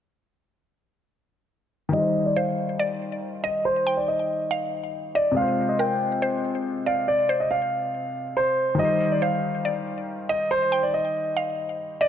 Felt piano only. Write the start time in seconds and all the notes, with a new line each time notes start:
1.89 D#3 G3
1.95 D#4 C5
5.32 C3 G#3
5.38 F4 C5
8.75 D#3 G3
8.81 D#4 C5